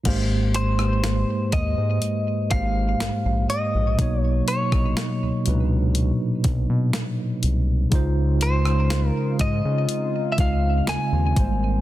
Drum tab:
CC |x---------------|----------------|----------------|
HH |x-x-x-x-x-x-x-x-|x-x-x-x-x-x-x-x-|x-x-x-x-x-x-x-x-|
SD |---ro-------o---|---ro-------o---|---ro-------o---|
BD |o-----o---o-----|o--o------o-----|o-----o---o---o-|